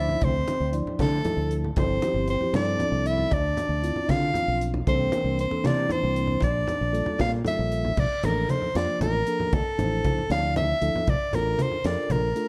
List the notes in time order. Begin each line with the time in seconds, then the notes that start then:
Already playing: D2 F3 D4 E4 C5 E5
0.09 low conga
0.21 D2 C4 C5, kick, closed hi-hat, high conga
0.48 closed hi-hat, low conga
0.60 D2, low conga
0.72 F3 D4 E4 D5, closed hi-hat
0.86 muted fretless electric bass stroke, low conga
0.99 D3 A3 A4, kick, snare, closed hi-hat, high conga, low conga
1.24 F3 D4 E4 A4, muted fretless electric bass stroke, closed hi-hat, low conga
1.37 D2
1.51 closed hi-hat
1.65 low conga
1.76 G1 F3 C4 E4 A4 C5, kick, closed hi-hat, high conga
2.02 F3 C4 E4 G4, closed hi-hat, low conga
2.14 G1, low conga
2.28 C4 C5, closed hi-hat
2.41 F3 C4 E4 G4, low conga
2.53 G2 F3 C4 D4 E4 A4 D5, snare, closed hi-hat, high conga
2.67 low conga
2.79 muted fretless electric bass stroke, closed hi-hat, low conga
2.92 C2
3.06 E4 E5, closed hi-hat
3.18 low conga
3.31 D2 D4 D5, kick, closed hi-hat, high conga
3.57 closed hi-hat, low conga
3.69 D2, low conga
3.83 C4 D4 E4 F4, closed hi-hat
3.96 muted fretless electric bass stroke, low conga
4.09 D3 F4 F5, kick, snare, closed hi-hat, high conga
4.21 low conga
4.34 F3 C4 D4 F4, muted fretless electric bass stroke, closed hi-hat, low conga
4.48 B1
4.61 closed hi-hat
4.74 low conga
4.87 C2 E3 A#3 C4 D4 A4 C5, kick, closed hi-hat, high conga
5.12 E3 A#3 D4 A#4, closed hi-hat, low conga
5.24 C2, low conga
5.39 C4 C5, closed hi-hat
5.50 E3 A#3 D4 A4, muted fretless electric bass stroke, low conga
5.63 C3 E3 A#3 D4 E4 D5, snare, closed hi-hat, high conga
5.77 low conga
5.89 C4 C5, muted fretless electric bass stroke, closed hi-hat, low conga
6.03 C2
6.16 closed hi-hat
6.27 low conga
6.40 A#1 D4 D5, kick, closed hi-hat, high conga, low conga
6.68 closed hi-hat, low conga
6.81 A#1
6.92 G3 A#3 F4 A4, closed hi-hat
7.06 muted fretless electric bass stroke, low conga
7.19 A#2 F5, kick, snare, closed hi-hat, high conga
7.33 low conga
7.44 G3 A#3 F4 A4 E5, muted fretless electric bass stroke, closed hi-hat, low conga
7.59 A#1
7.72 closed hi-hat
7.85 low conga
7.97 A#1 D5, kick, crash, high conga
8.11 muted fretless electric bass stroke
8.23 A1 F3 A#3 D4 A4 A#4, closed hi-hat, low conga
8.49 C5, closed hi-hat, high conga
8.62 low conga
8.75 F2 F3 A#3 D4 F4 D5, snare, closed hi-hat
9.01 A1 A#4, closed hi-hat, high conga, low conga
9.27 F3 A#3 D4 A4, closed hi-hat
9.40 low conga
9.53 D2 A4, kick, closed hi-hat, high conga
9.66 muted fretless electric bass stroke
9.78 A1 F3 D4 E4 C5, closed hi-hat, low conga
10.04 kick, closed hi-hat, high conga
10.18 low conga
10.30 D2 F3 D4 E4 D5 F5, snare, closed hi-hat
10.56 E5, closed hi-hat, high conga, low conga
10.81 D2 F3 D4 E4 A4, closed hi-hat
10.95 muted fretless electric bass stroke, low conga
11.07 A#1 D5, kick, closed hi-hat, high conga
11.20 muted fretless electric bass stroke
11.33 A1 D4 F4 A4 A#4, closed hi-hat, low conga
11.59 C5, closed hi-hat, high conga
11.71 low conga
11.84 F2 D4 F4 A4 A#4 D5, snare, closed hi-hat
12.10 A#1 A#4, closed hi-hat, high conga
12.35 A3 D4 F4 A4, closed hi-hat